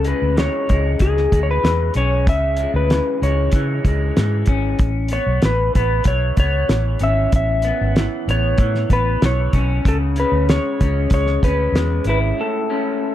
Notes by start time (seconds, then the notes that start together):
Already playing: C#2 C#3 E3 C#4
0.05 G#3 B4, closed hi-hat
0.22 D2
0.37 E3 C#5, snare, closed hi-hat
0.69 C#2 G#3, kick, closed hi-hat
0.99 C#2 E3 G#4, kick, closed hi-hat
1.17 snare
1.32 D2 G#3, kick, closed hi-hat
1.43 C#5
1.51 B4
1.64 E2 E3, snare, closed hi-hat
1.94 B1 C#4 C#5, closed hi-hat
2.27 C#2 C#3 E5, kick, closed hi-hat
2.57 G#3, closed hi-hat
2.74 D2 B4
2.90 E3, snare, closed hi-hat
3.22 C#2 G#3 C#5, closed hi-hat
3.52 C#3 E3, kick, closed hi-hat
3.85 C#2 G#3, kick, closed hi-hat
4.17 G#2 E3, snare, closed hi-hat
4.46 G#1 C#4, kick, closed hi-hat
4.79 A1, kick, closed hi-hat
5.08 B3, closed hi-hat
5.13 C#5
5.26 B1
5.42 A1 E3 B4, snare, closed hi-hat
5.75 A1 B3 B4, kick, closed hi-hat
6.04 B1 E3 C#5, kick, closed hi-hat
6.37 C#2 B3 C#5, kick, closed hi-hat
6.69 A1 E3, snare, closed hi-hat
6.99 G#1 C#4, closed hi-hat
7.03 E5
7.32 A1 E5, kick, closed hi-hat
7.62 B3, closed hi-hat
7.81 G#1
7.96 E3, snare, closed hi-hat
8.28 A1 B3 C#5, closed hi-hat
8.58 A2 E3, kick, closed hi-hat
8.75 snare
8.89 A1 B3 B4, kick, closed hi-hat
9.22 B1 E3 C#5, snare, closed hi-hat
9.53 B1 C#4, kick, closed hi-hat
9.85 C#2 C#3 A4, kick, closed hi-hat
10.16 C#4 B4, closed hi-hat
10.32 D2
10.49 G#3 C#5, snare, closed hi-hat
10.81 C#2 C#4, kick, closed hi-hat
11.10 C#2 G#3 C#5, kick, closed hi-hat
11.27 snare
11.43 D2 C#4 B4, kick, closed hi-hat
11.72 E2 G#3, snare, closed hi-hat
12.04 G#1 E4, closed hi-hat
12.09 B4
12.39 A2 A4
12.70 C#4